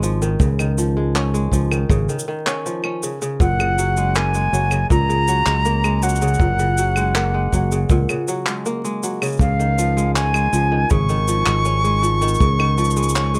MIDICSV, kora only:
0, 0, Header, 1, 2, 480
1, 0, Start_track
1, 0, Key_signature, -5, "major"
1, 0, Tempo, 750000
1, 258, Time_signature, 4, 2, 24, 8
1, 8573, End_track
2, 0, Start_track
2, 0, Title_t, "Kora"
2, 0, Program_c, 0, 46
2, 0, Note_on_c, 0, 51, 71
2, 0, Note_on_c, 0, 56, 77
2, 0, Note_on_c, 0, 61, 76
2, 19, Note_on_c, 0, 53, 74
2, 132, Note_off_c, 0, 51, 0
2, 140, Note_on_c, 0, 51, 84
2, 170, Note_off_c, 0, 53, 0
2, 170, Note_off_c, 0, 56, 0
2, 260, Note_on_c, 0, 49, 76
2, 290, Note_off_c, 0, 51, 0
2, 379, Note_on_c, 0, 51, 74
2, 410, Note_off_c, 0, 49, 0
2, 499, Note_on_c, 0, 53, 72
2, 619, Note_on_c, 0, 56, 69
2, 735, Note_off_c, 0, 61, 0
2, 738, Note_on_c, 0, 61, 77
2, 850, Note_off_c, 0, 56, 0
2, 857, Note_on_c, 0, 56, 72
2, 970, Note_off_c, 0, 53, 0
2, 978, Note_on_c, 0, 53, 69
2, 1090, Note_off_c, 0, 51, 0
2, 1098, Note_on_c, 0, 51, 64
2, 1130, Note_off_c, 0, 53, 0
2, 1130, Note_off_c, 0, 56, 0
2, 1217, Note_on_c, 0, 49, 98
2, 1250, Note_off_c, 0, 51, 0
2, 1338, Note_on_c, 0, 51, 69
2, 1370, Note_off_c, 0, 49, 0
2, 1451, Note_off_c, 0, 51, 0
2, 1458, Note_on_c, 0, 51, 77
2, 1576, Note_off_c, 0, 61, 0
2, 1578, Note_on_c, 0, 61, 88
2, 1701, Note_on_c, 0, 53, 74
2, 1818, Note_off_c, 0, 61, 0
2, 1821, Note_on_c, 0, 61, 75
2, 1940, Note_on_c, 0, 49, 69
2, 1970, Note_off_c, 0, 51, 0
2, 1970, Note_off_c, 0, 53, 0
2, 2052, Note_off_c, 0, 49, 0
2, 2060, Note_on_c, 0, 49, 81
2, 2180, Note_on_c, 0, 46, 68
2, 2210, Note_off_c, 0, 49, 0
2, 2300, Note_on_c, 0, 49, 71
2, 2330, Note_off_c, 0, 46, 0
2, 2422, Note_on_c, 0, 54, 76
2, 2542, Note_on_c, 0, 56, 71
2, 2662, Note_on_c, 0, 58, 75
2, 2774, Note_off_c, 0, 56, 0
2, 2782, Note_on_c, 0, 56, 67
2, 2892, Note_off_c, 0, 54, 0
2, 2900, Note_on_c, 0, 54, 69
2, 2933, Note_off_c, 0, 61, 0
2, 3012, Note_off_c, 0, 49, 0
2, 3020, Note_on_c, 0, 49, 68
2, 3050, Note_off_c, 0, 54, 0
2, 3141, Note_on_c, 0, 46, 90
2, 3170, Note_off_c, 0, 49, 0
2, 3260, Note_on_c, 0, 49, 72
2, 3290, Note_off_c, 0, 46, 0
2, 3380, Note_on_c, 0, 54, 73
2, 3492, Note_off_c, 0, 56, 0
2, 3500, Note_on_c, 0, 56, 66
2, 3616, Note_off_c, 0, 58, 0
2, 3618, Note_on_c, 0, 58, 81
2, 3731, Note_off_c, 0, 56, 0
2, 3738, Note_on_c, 0, 56, 76
2, 3852, Note_off_c, 0, 54, 0
2, 3859, Note_on_c, 0, 54, 70
2, 3972, Note_off_c, 0, 49, 0
2, 3980, Note_on_c, 0, 49, 87
2, 4010, Note_off_c, 0, 54, 0
2, 4099, Note_on_c, 0, 46, 73
2, 4130, Note_off_c, 0, 49, 0
2, 4219, Note_on_c, 0, 49, 74
2, 4250, Note_off_c, 0, 46, 0
2, 4341, Note_on_c, 0, 54, 74
2, 4452, Note_off_c, 0, 56, 0
2, 4460, Note_on_c, 0, 56, 68
2, 4577, Note_off_c, 0, 58, 0
2, 4580, Note_on_c, 0, 58, 77
2, 4690, Note_off_c, 0, 56, 0
2, 4698, Note_on_c, 0, 56, 67
2, 4814, Note_off_c, 0, 54, 0
2, 4821, Note_on_c, 0, 54, 68
2, 4933, Note_off_c, 0, 49, 0
2, 4941, Note_on_c, 0, 49, 71
2, 4970, Note_off_c, 0, 54, 0
2, 5061, Note_on_c, 0, 46, 90
2, 5090, Note_off_c, 0, 49, 0
2, 5181, Note_on_c, 0, 49, 74
2, 5210, Note_off_c, 0, 46, 0
2, 5301, Note_on_c, 0, 54, 77
2, 5414, Note_off_c, 0, 56, 0
2, 5421, Note_on_c, 0, 56, 62
2, 5539, Note_off_c, 0, 58, 0
2, 5542, Note_on_c, 0, 58, 85
2, 5653, Note_off_c, 0, 56, 0
2, 5661, Note_on_c, 0, 56, 75
2, 5774, Note_off_c, 0, 54, 0
2, 5781, Note_on_c, 0, 54, 71
2, 5893, Note_off_c, 0, 49, 0
2, 5901, Note_on_c, 0, 49, 86
2, 5930, Note_off_c, 0, 54, 0
2, 6013, Note_off_c, 0, 49, 0
2, 6020, Note_on_c, 0, 49, 72
2, 6050, Note_off_c, 0, 56, 0
2, 6140, Note_on_c, 0, 51, 70
2, 6170, Note_off_c, 0, 49, 0
2, 6261, Note_on_c, 0, 53, 69
2, 6379, Note_on_c, 0, 56, 74
2, 6499, Note_on_c, 0, 61, 78
2, 6611, Note_off_c, 0, 56, 0
2, 6619, Note_on_c, 0, 56, 71
2, 6732, Note_off_c, 0, 53, 0
2, 6739, Note_on_c, 0, 53, 76
2, 6776, Note_off_c, 0, 58, 0
2, 6851, Note_off_c, 0, 51, 0
2, 6859, Note_on_c, 0, 51, 73
2, 6890, Note_off_c, 0, 53, 0
2, 6890, Note_off_c, 0, 56, 0
2, 6980, Note_on_c, 0, 49, 96
2, 7010, Note_off_c, 0, 51, 0
2, 7100, Note_on_c, 0, 51, 75
2, 7130, Note_off_c, 0, 49, 0
2, 7221, Note_on_c, 0, 53, 71
2, 7339, Note_on_c, 0, 56, 63
2, 7455, Note_off_c, 0, 61, 0
2, 7457, Note_on_c, 0, 61, 79
2, 7571, Note_off_c, 0, 56, 0
2, 7578, Note_on_c, 0, 56, 79
2, 7690, Note_off_c, 0, 53, 0
2, 7697, Note_on_c, 0, 53, 76
2, 7810, Note_off_c, 0, 51, 0
2, 7818, Note_on_c, 0, 51, 85
2, 7850, Note_off_c, 0, 53, 0
2, 7850, Note_off_c, 0, 56, 0
2, 7939, Note_on_c, 0, 49, 73
2, 7970, Note_off_c, 0, 51, 0
2, 8058, Note_on_c, 0, 51, 77
2, 8090, Note_off_c, 0, 49, 0
2, 8178, Note_on_c, 0, 53, 74
2, 8297, Note_on_c, 0, 56, 72
2, 8417, Note_off_c, 0, 61, 0
2, 8419, Note_on_c, 0, 61, 82
2, 8532, Note_off_c, 0, 56, 0
2, 8540, Note_on_c, 0, 56, 73
2, 8573, Note_off_c, 0, 51, 0
2, 8573, Note_off_c, 0, 53, 0
2, 8573, Note_off_c, 0, 56, 0
2, 8573, Note_off_c, 0, 61, 0
2, 8573, End_track
0, 0, End_of_file